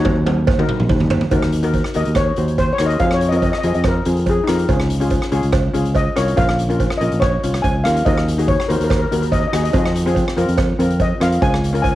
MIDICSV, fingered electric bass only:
0, 0, Header, 1, 2, 480
1, 0, Start_track
1, 0, Tempo, 420757
1, 1508, Time_signature, 4, 2, 24, 8
1, 13633, End_track
2, 0, Start_track
2, 0, Title_t, "Fingered electric bass"
2, 0, Program_c, 0, 33
2, 0, Note_on_c, 0, 39, 92
2, 694, Note_off_c, 0, 39, 0
2, 915, Note_on_c, 0, 34, 87
2, 1003, Note_off_c, 0, 34, 0
2, 1026, Note_on_c, 0, 39, 98
2, 1397, Note_off_c, 0, 39, 0
2, 1502, Note_on_c, 0, 39, 100
2, 2060, Note_off_c, 0, 39, 0
2, 2236, Note_on_c, 0, 39, 83
2, 2330, Note_off_c, 0, 39, 0
2, 2361, Note_on_c, 0, 39, 80
2, 2632, Note_off_c, 0, 39, 0
2, 2713, Note_on_c, 0, 39, 83
2, 3082, Note_off_c, 0, 39, 0
2, 3192, Note_on_c, 0, 39, 77
2, 3377, Note_off_c, 0, 39, 0
2, 3427, Note_on_c, 0, 41, 95
2, 3984, Note_off_c, 0, 41, 0
2, 4154, Note_on_c, 0, 41, 89
2, 4250, Note_off_c, 0, 41, 0
2, 4284, Note_on_c, 0, 41, 76
2, 4555, Note_off_c, 0, 41, 0
2, 4636, Note_on_c, 0, 41, 84
2, 5005, Note_off_c, 0, 41, 0
2, 5117, Note_on_c, 0, 41, 74
2, 5301, Note_off_c, 0, 41, 0
2, 5351, Note_on_c, 0, 37, 98
2, 5908, Note_off_c, 0, 37, 0
2, 6071, Note_on_c, 0, 37, 90
2, 6169, Note_off_c, 0, 37, 0
2, 6207, Note_on_c, 0, 37, 88
2, 6478, Note_off_c, 0, 37, 0
2, 6560, Note_on_c, 0, 37, 82
2, 6928, Note_off_c, 0, 37, 0
2, 7044, Note_on_c, 0, 36, 79
2, 7226, Note_off_c, 0, 36, 0
2, 7277, Note_on_c, 0, 34, 98
2, 7831, Note_off_c, 0, 34, 0
2, 7999, Note_on_c, 0, 34, 86
2, 8094, Note_off_c, 0, 34, 0
2, 8130, Note_on_c, 0, 34, 83
2, 8399, Note_off_c, 0, 34, 0
2, 8486, Note_on_c, 0, 36, 67
2, 8697, Note_off_c, 0, 36, 0
2, 8720, Note_on_c, 0, 37, 80
2, 8934, Note_off_c, 0, 37, 0
2, 8963, Note_on_c, 0, 39, 72
2, 9175, Note_off_c, 0, 39, 0
2, 9198, Note_on_c, 0, 39, 97
2, 9751, Note_off_c, 0, 39, 0
2, 9923, Note_on_c, 0, 39, 92
2, 10016, Note_off_c, 0, 39, 0
2, 10040, Note_on_c, 0, 39, 79
2, 10313, Note_off_c, 0, 39, 0
2, 10404, Note_on_c, 0, 39, 75
2, 10769, Note_off_c, 0, 39, 0
2, 10874, Note_on_c, 0, 39, 77
2, 11058, Note_off_c, 0, 39, 0
2, 11110, Note_on_c, 0, 41, 101
2, 11665, Note_off_c, 0, 41, 0
2, 11831, Note_on_c, 0, 41, 79
2, 11927, Note_off_c, 0, 41, 0
2, 11960, Note_on_c, 0, 41, 83
2, 12232, Note_off_c, 0, 41, 0
2, 12310, Note_on_c, 0, 41, 80
2, 12679, Note_off_c, 0, 41, 0
2, 12792, Note_on_c, 0, 41, 75
2, 12975, Note_off_c, 0, 41, 0
2, 13033, Note_on_c, 0, 37, 98
2, 13585, Note_off_c, 0, 37, 0
2, 13633, End_track
0, 0, End_of_file